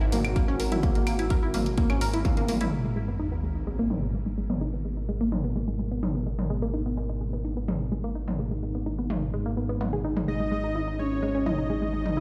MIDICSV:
0, 0, Header, 1, 8, 480
1, 0, Start_track
1, 0, Key_signature, 5, "minor"
1, 0, Tempo, 472441
1, 846, Time_signature, 4, 2, 24, 8
1, 12397, End_track
2, 0, Start_track
2, 0, Title_t, "Analog polysynth"
2, 0, Program_c, 0, 90
2, 10446, Note_on_c, 0, 75, 106
2, 11166, Note_off_c, 0, 75, 0
2, 11168, Note_on_c, 0, 73, 96
2, 11646, Note_on_c, 0, 75, 105
2, 11647, Note_off_c, 0, 73, 0
2, 12397, Note_off_c, 0, 75, 0
2, 12397, End_track
3, 0, Start_track
3, 0, Title_t, "Analog synth lead"
3, 0, Program_c, 1, 81
3, 126, Note_on_c, 1, 66, 114
3, 2673, Note_off_c, 1, 66, 0
3, 10446, Note_on_c, 1, 63, 105
3, 11166, Note_on_c, 1, 61, 87
3, 11181, Note_off_c, 1, 63, 0
3, 11647, Note_on_c, 1, 63, 109
3, 11662, Note_off_c, 1, 61, 0
3, 12397, Note_off_c, 1, 63, 0
3, 12397, End_track
4, 0, Start_track
4, 0, Title_t, "Analog synth pad"
4, 0, Program_c, 2, 89
4, 2766, Note_on_c, 2, 56, 76
4, 2766, Note_on_c, 2, 59, 71
4, 2766, Note_on_c, 2, 63, 71
4, 2766, Note_on_c, 2, 70, 82
4, 10405, Note_off_c, 2, 59, 0
4, 10406, Note_off_c, 2, 70, 0
4, 10446, Note_on_c, 2, 73, 85
4, 10447, Note_on_c, 2, 52, 70
4, 12347, Note_off_c, 2, 73, 0
4, 12397, Note_off_c, 2, 52, 0
4, 12397, Note_off_c, 2, 56, 0
4, 12397, Note_off_c, 2, 63, 0
4, 12397, End_track
5, 0, Start_track
5, 0, Title_t, "Synth pluck"
5, 0, Program_c, 3, 84
5, 11, Note_on_c, 3, 64, 77
5, 50, Note_off_c, 3, 64, 0
5, 127, Note_on_c, 3, 58, 76
5, 198, Note_off_c, 3, 58, 0
5, 367, Note_on_c, 3, 58, 101
5, 438, Note_off_c, 3, 58, 0
5, 491, Note_on_c, 3, 61, 105
5, 557, Note_off_c, 3, 61, 0
5, 607, Note_on_c, 3, 70, 79
5, 649, Note_off_c, 3, 70, 0
5, 731, Note_on_c, 3, 64, 75
5, 771, Note_off_c, 3, 64, 0
5, 846, Note_on_c, 3, 58, 84
5, 917, Note_off_c, 3, 58, 0
5, 970, Note_on_c, 3, 58, 78
5, 1037, Note_off_c, 3, 58, 0
5, 1087, Note_on_c, 3, 58, 81
5, 1158, Note_off_c, 3, 58, 0
5, 1209, Note_on_c, 3, 64, 79
5, 1277, Note_off_c, 3, 64, 0
5, 1326, Note_on_c, 3, 70, 83
5, 1397, Note_off_c, 3, 70, 0
5, 1450, Note_on_c, 3, 64, 77
5, 1490, Note_off_c, 3, 64, 0
5, 1567, Note_on_c, 3, 58, 78
5, 1638, Note_off_c, 3, 58, 0
5, 1807, Note_on_c, 3, 58, 101
5, 1878, Note_off_c, 3, 58, 0
5, 1930, Note_on_c, 3, 61, 100
5, 1997, Note_off_c, 3, 61, 0
5, 2046, Note_on_c, 3, 70, 78
5, 2089, Note_off_c, 3, 70, 0
5, 2171, Note_on_c, 3, 64, 80
5, 2210, Note_off_c, 3, 64, 0
5, 2286, Note_on_c, 3, 58, 81
5, 2357, Note_off_c, 3, 58, 0
5, 2410, Note_on_c, 3, 58, 81
5, 2477, Note_off_c, 3, 58, 0
5, 2527, Note_on_c, 3, 58, 78
5, 2598, Note_off_c, 3, 58, 0
5, 2651, Note_on_c, 3, 64, 75
5, 2717, Note_off_c, 3, 64, 0
5, 2768, Note_on_c, 3, 56, 79
5, 2838, Note_off_c, 3, 56, 0
5, 2891, Note_on_c, 3, 56, 73
5, 2957, Note_off_c, 3, 56, 0
5, 3008, Note_on_c, 3, 56, 78
5, 3078, Note_off_c, 3, 56, 0
5, 3131, Note_on_c, 3, 59, 75
5, 3197, Note_off_c, 3, 59, 0
5, 3246, Note_on_c, 3, 63, 82
5, 3317, Note_off_c, 3, 63, 0
5, 3370, Note_on_c, 3, 59, 76
5, 3410, Note_off_c, 3, 59, 0
5, 3487, Note_on_c, 3, 56, 75
5, 3558, Note_off_c, 3, 56, 0
5, 3728, Note_on_c, 3, 56, 98
5, 3798, Note_off_c, 3, 56, 0
5, 3851, Note_on_c, 3, 58, 100
5, 3917, Note_off_c, 3, 58, 0
5, 3968, Note_on_c, 3, 63, 73
5, 4010, Note_off_c, 3, 63, 0
5, 4091, Note_on_c, 3, 59, 75
5, 4131, Note_off_c, 3, 59, 0
5, 4207, Note_on_c, 3, 56, 79
5, 4278, Note_off_c, 3, 56, 0
5, 4330, Note_on_c, 3, 56, 76
5, 4397, Note_off_c, 3, 56, 0
5, 4448, Note_on_c, 3, 56, 78
5, 4518, Note_off_c, 3, 56, 0
5, 4570, Note_on_c, 3, 59, 74
5, 4637, Note_off_c, 3, 59, 0
5, 4687, Note_on_c, 3, 63, 79
5, 4758, Note_off_c, 3, 63, 0
5, 4811, Note_on_c, 3, 59, 72
5, 4851, Note_off_c, 3, 59, 0
5, 4928, Note_on_c, 3, 56, 76
5, 4998, Note_off_c, 3, 56, 0
5, 5168, Note_on_c, 3, 56, 98
5, 5238, Note_off_c, 3, 56, 0
5, 5292, Note_on_c, 3, 58, 100
5, 5358, Note_off_c, 3, 58, 0
5, 5407, Note_on_c, 3, 63, 76
5, 5449, Note_off_c, 3, 63, 0
5, 5531, Note_on_c, 3, 59, 80
5, 5570, Note_off_c, 3, 59, 0
5, 5647, Note_on_c, 3, 56, 81
5, 5718, Note_off_c, 3, 56, 0
5, 5770, Note_on_c, 3, 56, 74
5, 5837, Note_off_c, 3, 56, 0
5, 5886, Note_on_c, 3, 56, 77
5, 5957, Note_off_c, 3, 56, 0
5, 6009, Note_on_c, 3, 59, 75
5, 6077, Note_off_c, 3, 59, 0
5, 6125, Note_on_c, 3, 63, 81
5, 6197, Note_off_c, 3, 63, 0
5, 6249, Note_on_c, 3, 59, 74
5, 6289, Note_off_c, 3, 59, 0
5, 6365, Note_on_c, 3, 56, 76
5, 6437, Note_off_c, 3, 56, 0
5, 6605, Note_on_c, 3, 56, 102
5, 6677, Note_off_c, 3, 56, 0
5, 6729, Note_on_c, 3, 58, 98
5, 6796, Note_off_c, 3, 58, 0
5, 6845, Note_on_c, 3, 63, 80
5, 6888, Note_off_c, 3, 63, 0
5, 6969, Note_on_c, 3, 59, 75
5, 7010, Note_off_c, 3, 59, 0
5, 7085, Note_on_c, 3, 56, 81
5, 7157, Note_off_c, 3, 56, 0
5, 7209, Note_on_c, 3, 56, 74
5, 7276, Note_off_c, 3, 56, 0
5, 7325, Note_on_c, 3, 56, 74
5, 7397, Note_off_c, 3, 56, 0
5, 7449, Note_on_c, 3, 59, 78
5, 7517, Note_off_c, 3, 59, 0
5, 7565, Note_on_c, 3, 63, 78
5, 7637, Note_off_c, 3, 63, 0
5, 7689, Note_on_c, 3, 59, 74
5, 7730, Note_off_c, 3, 59, 0
5, 7806, Note_on_c, 3, 56, 74
5, 7877, Note_off_c, 3, 56, 0
5, 8045, Note_on_c, 3, 56, 97
5, 8117, Note_off_c, 3, 56, 0
5, 8169, Note_on_c, 3, 58, 100
5, 8236, Note_off_c, 3, 58, 0
5, 8285, Note_on_c, 3, 63, 75
5, 8328, Note_off_c, 3, 63, 0
5, 8408, Note_on_c, 3, 59, 75
5, 8449, Note_off_c, 3, 59, 0
5, 8525, Note_on_c, 3, 56, 80
5, 8597, Note_off_c, 3, 56, 0
5, 8649, Note_on_c, 3, 56, 73
5, 8716, Note_off_c, 3, 56, 0
5, 8766, Note_on_c, 3, 56, 78
5, 8837, Note_off_c, 3, 56, 0
5, 8889, Note_on_c, 3, 59, 79
5, 8956, Note_off_c, 3, 59, 0
5, 9005, Note_on_c, 3, 63, 81
5, 9077, Note_off_c, 3, 63, 0
5, 9129, Note_on_c, 3, 59, 76
5, 9170, Note_off_c, 3, 59, 0
5, 9245, Note_on_c, 3, 56, 74
5, 9317, Note_off_c, 3, 56, 0
5, 9485, Note_on_c, 3, 56, 101
5, 9557, Note_off_c, 3, 56, 0
5, 9609, Note_on_c, 3, 58, 98
5, 9676, Note_off_c, 3, 58, 0
5, 9725, Note_on_c, 3, 59, 75
5, 9797, Note_off_c, 3, 59, 0
5, 9848, Note_on_c, 3, 59, 99
5, 9916, Note_off_c, 3, 59, 0
5, 9966, Note_on_c, 3, 59, 98
5, 10037, Note_off_c, 3, 59, 0
5, 10088, Note_on_c, 3, 68, 76
5, 10129, Note_off_c, 3, 68, 0
5, 10206, Note_on_c, 3, 63, 77
5, 10277, Note_off_c, 3, 63, 0
5, 10329, Note_on_c, 3, 56, 95
5, 10369, Note_off_c, 3, 56, 0
5, 10445, Note_on_c, 3, 56, 84
5, 10517, Note_off_c, 3, 56, 0
5, 10569, Note_on_c, 3, 56, 75
5, 10636, Note_off_c, 3, 56, 0
5, 10685, Note_on_c, 3, 56, 78
5, 10757, Note_off_c, 3, 56, 0
5, 10809, Note_on_c, 3, 63, 76
5, 10876, Note_off_c, 3, 63, 0
5, 10926, Note_on_c, 3, 64, 81
5, 10997, Note_off_c, 3, 64, 0
5, 11049, Note_on_c, 3, 63, 75
5, 11090, Note_off_c, 3, 63, 0
5, 11165, Note_on_c, 3, 56, 76
5, 11237, Note_off_c, 3, 56, 0
5, 11405, Note_on_c, 3, 56, 98
5, 11477, Note_off_c, 3, 56, 0
5, 11529, Note_on_c, 3, 61, 99
5, 11597, Note_off_c, 3, 61, 0
5, 11646, Note_on_c, 3, 64, 74
5, 11689, Note_off_c, 3, 64, 0
5, 11769, Note_on_c, 3, 63, 73
5, 11809, Note_off_c, 3, 63, 0
5, 11886, Note_on_c, 3, 56, 80
5, 11957, Note_off_c, 3, 56, 0
5, 12010, Note_on_c, 3, 56, 79
5, 12077, Note_off_c, 3, 56, 0
5, 12126, Note_on_c, 3, 56, 76
5, 12197, Note_off_c, 3, 56, 0
5, 12249, Note_on_c, 3, 63, 74
5, 12316, Note_off_c, 3, 63, 0
5, 12366, Note_on_c, 3, 64, 84
5, 12397, Note_off_c, 3, 64, 0
5, 12397, End_track
6, 0, Start_track
6, 0, Title_t, "Detuned saw bass"
6, 0, Program_c, 4, 39
6, 0, Note_on_c, 4, 32, 88
6, 2742, Note_off_c, 4, 32, 0
6, 2765, Note_on_c, 4, 32, 84
6, 10423, Note_off_c, 4, 32, 0
6, 10445, Note_on_c, 4, 32, 88
6, 12397, Note_off_c, 4, 32, 0
6, 12397, End_track
7, 0, Start_track
7, 0, Title_t, "Sub drop"
7, 0, Program_c, 5, 103
7, 2765, Note_on_c, 5, 60, 68
7, 4686, Note_off_c, 5, 60, 0
7, 12397, End_track
8, 0, Start_track
8, 0, Title_t, "Drums"
8, 126, Note_on_c, 9, 45, 80
8, 126, Note_on_c, 9, 46, 101
8, 227, Note_off_c, 9, 45, 0
8, 227, Note_off_c, 9, 46, 0
8, 250, Note_on_c, 9, 42, 35
8, 250, Note_on_c, 9, 75, 52
8, 351, Note_off_c, 9, 42, 0
8, 351, Note_off_c, 9, 75, 0
8, 365, Note_on_c, 9, 36, 114
8, 366, Note_on_c, 9, 42, 45
8, 467, Note_off_c, 9, 36, 0
8, 467, Note_off_c, 9, 42, 0
8, 606, Note_on_c, 9, 46, 89
8, 708, Note_off_c, 9, 46, 0
8, 730, Note_on_c, 9, 42, 34
8, 730, Note_on_c, 9, 45, 80
8, 832, Note_off_c, 9, 42, 0
8, 832, Note_off_c, 9, 45, 0
8, 845, Note_on_c, 9, 36, 119
8, 846, Note_on_c, 9, 42, 49
8, 947, Note_off_c, 9, 36, 0
8, 948, Note_off_c, 9, 42, 0
8, 969, Note_on_c, 9, 42, 33
8, 1070, Note_off_c, 9, 42, 0
8, 1085, Note_on_c, 9, 46, 102
8, 1085, Note_on_c, 9, 75, 50
8, 1186, Note_off_c, 9, 46, 0
8, 1186, Note_off_c, 9, 75, 0
8, 1209, Note_on_c, 9, 42, 36
8, 1310, Note_off_c, 9, 42, 0
8, 1324, Note_on_c, 9, 42, 47
8, 1325, Note_on_c, 9, 36, 116
8, 1426, Note_off_c, 9, 42, 0
8, 1427, Note_off_c, 9, 36, 0
8, 1564, Note_on_c, 9, 45, 89
8, 1564, Note_on_c, 9, 46, 89
8, 1666, Note_off_c, 9, 45, 0
8, 1666, Note_off_c, 9, 46, 0
8, 1689, Note_on_c, 9, 42, 35
8, 1790, Note_off_c, 9, 42, 0
8, 1804, Note_on_c, 9, 42, 46
8, 1805, Note_on_c, 9, 36, 115
8, 1906, Note_off_c, 9, 42, 0
8, 1907, Note_off_c, 9, 36, 0
8, 1928, Note_on_c, 9, 42, 34
8, 1928, Note_on_c, 9, 75, 50
8, 2030, Note_off_c, 9, 42, 0
8, 2030, Note_off_c, 9, 75, 0
8, 2045, Note_on_c, 9, 46, 104
8, 2146, Note_off_c, 9, 46, 0
8, 2170, Note_on_c, 9, 42, 35
8, 2271, Note_off_c, 9, 42, 0
8, 2285, Note_on_c, 9, 36, 114
8, 2286, Note_on_c, 9, 42, 47
8, 2286, Note_on_c, 9, 45, 87
8, 2286, Note_on_c, 9, 48, 60
8, 2387, Note_off_c, 9, 36, 0
8, 2388, Note_off_c, 9, 42, 0
8, 2388, Note_off_c, 9, 45, 0
8, 2388, Note_off_c, 9, 48, 0
8, 2409, Note_on_c, 9, 42, 33
8, 2409, Note_on_c, 9, 48, 63
8, 2510, Note_off_c, 9, 42, 0
8, 2510, Note_off_c, 9, 48, 0
8, 2525, Note_on_c, 9, 46, 86
8, 2525, Note_on_c, 9, 47, 84
8, 2626, Note_off_c, 9, 46, 0
8, 2626, Note_off_c, 9, 47, 0
8, 2649, Note_on_c, 9, 42, 35
8, 2649, Note_on_c, 9, 45, 86
8, 2751, Note_off_c, 9, 42, 0
8, 2751, Note_off_c, 9, 45, 0
8, 2766, Note_on_c, 9, 49, 81
8, 2868, Note_off_c, 9, 49, 0
8, 3965, Note_on_c, 9, 45, 71
8, 4067, Note_off_c, 9, 45, 0
8, 4570, Note_on_c, 9, 45, 71
8, 4671, Note_off_c, 9, 45, 0
8, 5406, Note_on_c, 9, 45, 83
8, 5508, Note_off_c, 9, 45, 0
8, 6126, Note_on_c, 9, 45, 80
8, 6228, Note_off_c, 9, 45, 0
8, 6489, Note_on_c, 9, 45, 71
8, 6591, Note_off_c, 9, 45, 0
8, 7807, Note_on_c, 9, 45, 74
8, 7908, Note_off_c, 9, 45, 0
8, 8410, Note_on_c, 9, 45, 73
8, 8511, Note_off_c, 9, 45, 0
8, 9246, Note_on_c, 9, 45, 91
8, 9348, Note_off_c, 9, 45, 0
8, 9965, Note_on_c, 9, 45, 86
8, 10067, Note_off_c, 9, 45, 0
8, 10329, Note_on_c, 9, 45, 76
8, 10430, Note_off_c, 9, 45, 0
8, 11646, Note_on_c, 9, 45, 78
8, 11747, Note_off_c, 9, 45, 0
8, 12249, Note_on_c, 9, 45, 80
8, 12351, Note_off_c, 9, 45, 0
8, 12397, End_track
0, 0, End_of_file